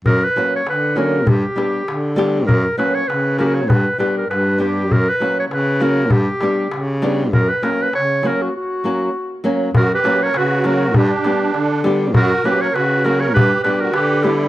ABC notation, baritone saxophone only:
X:1
M:2/4
L:1/8
Q:"Swing 16ths" 1/4=99
K:none
V:1 name="Baritone saxophone" clef=bass
^F,, z D,2 | G,, z D,2 | ^F,, z ^C,2 | G,, z G,,2 |
^F,, z ^C,2 | G,, z ^C,2 | ^F,, z ^C,2 | z4 |
^F,, z ^C,2 | G,, z D,2 | ^F,, z ^C,2 | G,, z D,2 |]